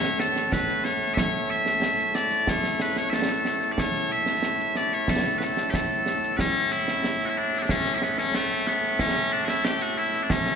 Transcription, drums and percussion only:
0.04 snare medium
0.20 snare medium
0.36 snare medium
0.52 concert bass drum medium
0.52 snare medium
0.69 snare soft
0.85 snare medium
1.01 snare soft
1.17 concert bass drum medium
1.17 snare loud
1.50 snare soft
1.66 snare medium
1.82 snare loud
1.99 snare soft
2.15 snare medium
2.31 snare soft
2.47 concert bass drum medium
2.47 snare loud
2.64 snare medium
2.80 snare medium
2.96 snare medium
3.13 snare medium
3.29 snare soft
3.45 snare medium
3.62 snare soft
3.78 concert bass drum medium
3.78 snare medium
3.94 snare soft
4.10 snare soft
4.26 snare medium
4.43 snare medium
4.59 snare soft
4.75 snare medium
4.92 snare soft
5.08 concert bass drum medium
5.08 snare loud
5.24 snare medium
5.41 snare medium
5.57 snare medium
5.74 concert bass drum medium
5.74 snare medium
5.90 snare soft
6.06 snare medium
6.23 snare soft
6.39 concert bass drum medium
6.39 snare loud
6.55 snare soft
6.71 snare soft
6.88 snare medium
7.04 snare loud
7.21 snare soft
7.53 snare soft
7.69 concert bass drum medium
7.69 snare loud
7.85 snare medium
8.02 snare medium
8.18 snare medium
8.35 snare medium
8.51 snare soft
8.67 snare medium
8.83 snare soft
8.99 concert bass drum medium
8.99 snare medium
9.16 snare soft
9.32 snare soft
9.48 snare medium
9.65 snare loud
9.81 snare soft
10.14 snare soft
10.30 concert bass drum medium
10.30 snare loud
10.46 snare medium

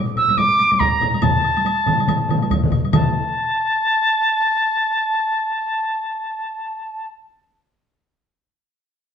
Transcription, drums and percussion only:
0.16 taiko low-mid medium
0.16 high woodblock soft
0.28 taiko low-mid medium
0.28 taiko high medium
0.28 high woodblock soft
0.37 taiko low-mid medium
0.37 taiko high medium
0.37 high woodblock medium
0.59 taiko high medium
0.59 high woodblock soft
0.71 taiko low-mid medium
0.71 taiko high medium
0.71 high woodblock soft
0.80 taiko medium
0.80 taiko low-mid medium
0.80 taiko high medium
0.80 high woodblock medium
1.01 taiko medium
1.01 taiko low-mid medium
1.01 high woodblock soft
1.14 taiko high medium
1.14 high woodblock soft
1.22 taiko loud
1.22 taiko low-mid loud
1.22 taiko mid loud
1.22 taiko high medium
1.22 high woodblock medium
1.44 high woodblock soft
1.57 taiko high medium
1.57 high woodblock soft
1.65 taiko high medium
1.65 high woodblock medium
1.86 taiko low-mid medium
1.86 taiko mid medium
1.86 high woodblock soft
1.99 taiko high medium
1.99 high woodblock soft
2.08 taiko low-mid loud
2.08 taiko mid loud
2.08 taiko high medium
2.08 high woodblock medium
2.29 taiko low-mid loud
2.29 taiko mid loud
2.29 high woodblock soft
2.42 taiko high medium
2.42 high woodblock soft
2.50 taiko medium
2.50 taiko low-mid loud
2.50 taiko mid medium
2.50 taiko high medium
2.50 high woodblock medium
2.64 taiko low-mid loud
2.64 taiko mid medium
2.72 taiko medium
2.72 high woodblock soft
2.84 taiko high medium
2.84 high woodblock soft
2.92 taiko medium
2.92 taiko low-mid loud
2.92 taiko mid loud
2.92 taiko high medium
2.92 high woodblock medium

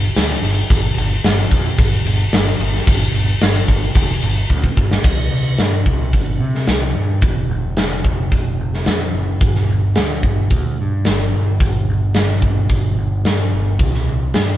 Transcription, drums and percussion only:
0.16 snare loud
0.16 crash medium
0.44 crash medium
0.70 kick loud
0.70 crash medium
0.98 crash medium
1.24 snare loud
1.24 crash medium
1.51 kick medium
1.51 crash medium
1.78 kick loud
1.78 crash medium
2.07 crash medium
2.33 snare loud
2.33 crash medium
2.61 crash medium
2.75 snare soft
2.87 kick loud
2.87 crash medium
3.15 crash medium
3.41 snare loud
3.41 crash medium
3.68 kick medium
3.68 crash medium
3.95 kick loud
3.95 crash medium
4.23 crash medium
4.50 kick medium
4.64 kick medium
4.77 kick medium
4.91 snare medium
5.04 kick loud
5.04 crash loud
5.58 snare loud
5.58 open hi-hat soft
5.86 kick medium
6.13 kick medium
6.13 open hi-hat soft
6.55 snare soft
6.67 snare loud
6.67 open hi-hat medium
7.22 kick loud
7.22 open hi-hat medium
7.77 snare loud
7.77 open hi-hat medium
8.04 kick medium
8.32 kick medium
8.32 open hi-hat medium
8.74 snare soft
8.86 snare loud
8.86 open hi-hat medium
9.41 kick loud
9.41 open hi-hat medium
9.55 snare soft
9.95 snare loud
9.95 open hi-hat medium
10.23 kick medium
10.50 kick medium
10.50 open hi-hat soft
11.05 snare loud
11.05 open hi-hat medium
11.60 kick loud
11.60 open hi-hat medium
12.14 snare loud
12.14 open hi-hat medium
12.42 kick medium
12.69 kick medium
12.69 open hi-hat medium
13.25 snare loud
13.25 open hi-hat medium
13.79 kick loud
13.79 open hi-hat medium
13.94 snare soft
14.34 snare loud
14.34 open hi-hat medium

